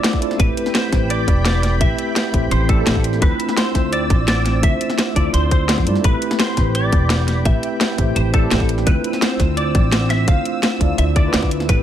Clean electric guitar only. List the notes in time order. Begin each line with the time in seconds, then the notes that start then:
Already playing: D5
0.40 B4
0.75 C5
1.10 D5
1.45 D5
1.81 E5
2.52 C5
2.69 A4
3.22 B4
3.57 C5
3.93 D5
4.28 D5
4.63 E5
5.16 D5
5.33 C5
5.51 C5
6.04 B4
6.39 C5
6.75 D5
7.46 E5
8.16 C5
8.34 A4
8.87 B4
9.22 C5
9.57 D5
10.10 E5
10.28 F5
10.98 E5
11.16 D5
11.69 B4